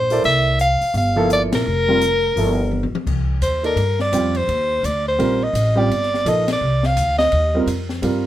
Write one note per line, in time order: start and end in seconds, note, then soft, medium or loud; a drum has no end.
0.00 0.21 A#1 medium
0.00 0.22 C5 medium
0.10 0.57 A#3 medium
0.10 0.57 E4 medium
0.10 0.57 A4 medium
0.10 0.58 D5 medium
0.10 open hi-hat soft
0.24 0.77 C2 medium
0.24 0.57 E5 loud
0.24 open hi-hat soft
0.59 0.93 F5 loud
0.59 closed hi-hat medium
0.81 muted upright bass stroke soft
0.81 open hi-hat soft
0.94 1.48 G1 medium
0.94 1.29 F5 medium
0.94 open hi-hat soft
1.16 1.63 F3 medium
1.16 1.63 A#3 medium
1.16 1.63 E4 medium
1.16 1.63 A4 medium
1.30 1.42 D5 loud
1.30 closed hi-hat medium
1.53 1.65 A#1 medium
1.53 2.91 A#4 loud
1.53 snare medium
1.53 ride medium
1.66 2.33 F1 medium
1.88 2.00 G3 medium
1.88 2.00 C4 medium
1.88 2.01 F4 medium
1.88 2.01 A#4 medium
2.01 closed hi-hat medium
2.36 2.90 G1 medium
2.36 2.57 F3 medium
2.36 2.57 A#3 medium
2.36 2.57 E4 medium
2.36 2.57 A4 medium
2.36 open hi-hat soft
2.71 high tom soft
2.83 high tom medium
2.92 muted upright bass stroke soft
2.92 high tom medium
3.07 3.41 C2 medium
3.07 kick medium
3.07 crash medium
3.41 3.75 D#2 medium
3.41 3.63 C5 medium
3.41 hi-hat pedal soft
3.41 ride medium
3.63 3.76 A#3 medium
3.63 3.76 D#4 medium
3.63 3.77 A4 medium
3.63 3.98 A#4 medium
3.63 3.77 D5 medium
3.63 ride soft
3.76 4.11 G2 medium
3.76 ride medium
3.99 4.38 D5 medium
3.99 snare soft
4.12 4.47 F2 medium
4.12 4.33 G3 medium
4.12 4.33 C4 medium
4.12 4.33 F4 medium
4.12 4.34 G4 medium
4.12 hi-hat pedal medium
4.12 ride medium
4.35 4.87 C5 medium
4.35 ride soft
4.48 4.83 D#2 medium
4.48 ride medium
4.83 5.18 D2 medium
4.83 5.07 D5 medium
4.83 hi-hat pedal medium
4.83 ride medium
5.08 5.44 C5 medium
5.18 5.53 A#1 medium
5.18 5.39 G3 medium
5.18 5.39 C4 medium
5.18 5.39 F4 medium
5.18 5.39 A#4 medium
5.18 ride medium
5.43 5.79 D#5 medium
5.53 5.89 A1 medium
5.53 hi-hat pedal soft
5.53 ride medium
5.75 5.88 G3 medium
5.75 5.88 C4 medium
5.75 5.89 F4 medium
5.75 5.89 G4 medium
5.75 6.30 D5 loud
5.90 6.24 G1 medium
5.90 ride medium
6.03 snare soft
6.14 snare soft
6.25 6.60 A#1 medium
6.25 6.46 F3 medium
6.25 6.46 A#3 soft
6.25 6.46 D#4 medium
6.25 6.46 A4 medium
6.25 6.49 D#5 loud
6.25 hi-hat pedal soft
6.25 ride medium
6.48 snare medium
6.48 ride medium
6.52 6.87 D5 medium
6.61 6.96 C2 medium
6.83 7.18 F5 loud
6.83 snare medium
6.96 7.31 D2 medium
6.96 hi-hat pedal soft
6.96 ride medium
7.18 7.64 D#5 loud
7.18 snare medium
7.32 7.66 D#2 medium
7.32 ride medium
7.55 7.66 G3 medium
7.55 7.67 C4 medium
7.55 7.67 F4 medium
7.55 7.67 A#4 medium
7.66 8.01 F2 medium
7.66 hi-hat pedal soft
7.66 ride medium
7.89 snare soft
8.02 8.27 G2 medium
8.02 8.23 G3 medium
8.02 8.23 C4 medium
8.02 8.23 F4 medium
8.02 8.23 A#4 medium
8.02 ride medium